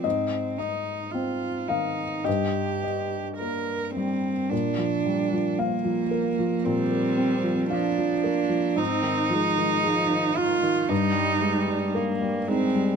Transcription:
<<
  \new Staff \with { instrumentName = "Cello" } { \time 4/4 \key bes \mixolydian \tempo 4 = 56 c'8 ees'8 f'8 ees'8 g'4 bes'8 c'8 | d'4 bes4 c'4 d'4 | ees'4. f'8 ees'4 r8 c'8 | }
  \new Staff \with { instrumentName = "Viola" } { \clef bass \time 4/4 \key bes \mixolydian r1 | r2 g4 f8 bes8 | c'8 aes8 f8 ees8 g4 bes8 aes8 | }
  \new Staff \with { instrumentName = "Felt piano" } { \time 4/4 \key bes \mixolydian ees''4. f''8 ees''4. r8 | r1 | r1 | }
  \new Staff \with { instrumentName = "Felt piano" } { \clef bass \time 4/4 \key bes \mixolydian aes,8 ees''8 c'8 ees8 g,8 ees''8 bes8 g8 | bes,16 f16 g16 f16 f''16 f16 bes'16 f16 bes,16 bes16 c'16 f16 f''16 f16 bes'16 f16 | aes,16 ees16 f16 ees16 aes'16 ees16 ees'16 ees16 g,16 g16 aes16 g16 bes'16 g16 ees'16 g16 | }
>>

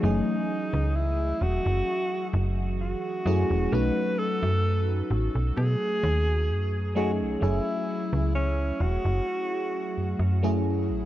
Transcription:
<<
  \new Staff \with { instrumentName = "Alto saxophone" } { \time 4/4 \key fis \dorian \tempo 4 = 65 dis'4 e'8 fis'4 r8 fis'4 | b'8 a'4 r8 gis'4. fis'8 | e'4 cis'8 fis'2 r8 | }
  \new Staff \with { instrumentName = "FM electric piano" } { \time 4/4 \key fis \dorian <e fis a cis' gis'>2.~ <e fis a cis' gis'>8 <fis a cis' e' gis'>8 | <fis a cis' dis' fis'>2.~ <fis a cis' dis' fis'>8 <fis a cis' dis' gis'>8 | <fis a cis' e' gis'>2.~ <fis a cis' e' gis'>16 <fis a cis' e' gis'>8. | }
  \new Staff \with { instrumentName = "FM bass" } { \clef bass \time 4/4 \key fis \dorian fis,,16 r8 cis,8. e,,16 fis,,16 r8 fis,,8. r16 fis,16 e,,16 | b,,16 r8 fis,8. a,,16 b,,16 b,16 r16 dis,8 fis,8. b,,16 | fis,,16 r8 cis,8. e,,16 fis,,16 r8. fis,16 fis,8. a,,16 | }
>>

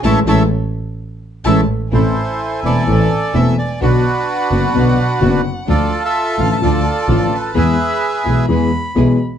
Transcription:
<<
  \new Staff \with { instrumentName = "Violin" } { \time 4/4 \key a \major \tempo 4 = 128 a''8 a''8 r2 a''8 r8 | \key a \minor gis''1 | fis''1 | a''1 |
b''4 gis''4 b''4. r8 | }
  \new Staff \with { instrumentName = "Bandoneon" } { \time 4/4 \key a \major << { <a' cis'' e''>8 <a' cis'' e''>8 r2 <a' cis'' e''>8 r8 | \key a \minor c''4. d''4. e''8 d''8 | b'2.~ b'8 r8 | d''8. e''8. f''16 e''16 d''4. b'8 |
e''2 r2 | } \\ { r1 | <e' a'>4. a'2 r8 | <d' fis'>2.~ <d' fis'>8 r8 | <f' a'>8. a'4~ a'16 <f' a'>2 |
<gis' b'>2 r2 | } >> }
  \new Staff \with { instrumentName = "String section" } { \time 4/4 \key a \major <a cis' e'>8 <a cis' e'>8 r2 <a cis' e'>8 r8 | \key a \minor <a c' e'>8 r4 <a c' e'>8 <a c' e'>8 r8 <a c' e'>8 r8 | <b d' fis'>8 r4 <b d' fis'>8 <b d' fis'>8 r8 <b d' fis'>8 r8 | <a d' f'>8 r4 <a d' f'>8 <a d' f'>8 r8 <a d' f'>8 r8 |
<b e' gis'>8 r4 <b e' gis'>8 <b e' gis'>8 r8 <b e' gis'>8 r8 | }
  \new Staff \with { instrumentName = "Grand piano" } { \clef bass \time 4/4 \key a \major <e gis a>8 <e gis a>8 r2 <e gis a>8 r8 | \key a \minor <a,, a, e a c' a'>8 r4 <e,, e, e a c' a'>8 <a,, a, e a c' a'>8 r8 <e,, e, e a c' a'>8 r8 | <b,, b, d fis b fis'>8 r4 <fis,, fis, d fis b fis'>8 <b,, b, d fis b fis'>8 r8 <fis,, fis, d fis b fis'>8 r8 | <d, d f a f'>8 r4 <a,, a, d f a f'>8 <d, d f a f'>8 r8 <a,, a, d f a f'>8 r8 |
<e, e gis b gis'>8 r4 <b,, b, e gis b gis'>8 <e, e gis b gis'>8 r8 <b,, b, e gis b gis'>8 r8 | }
  \new Staff \with { instrumentName = "Double bass" } { \clef bass \time 4/4 \key a \major a,,8 a,,8 r2 a,,8 r8 | \key a \minor a,,8 r4 e,,8 a,,8 r8 e,,8 r8 | b,,8 r4 fis,,8 b,,8 r8 fis,,8 r8 | d,8 r4 a,,8 d,8 r8 a,,8 r8 |
e,8 r4 b,,8 e,8 r8 b,,8 r8 | }
>>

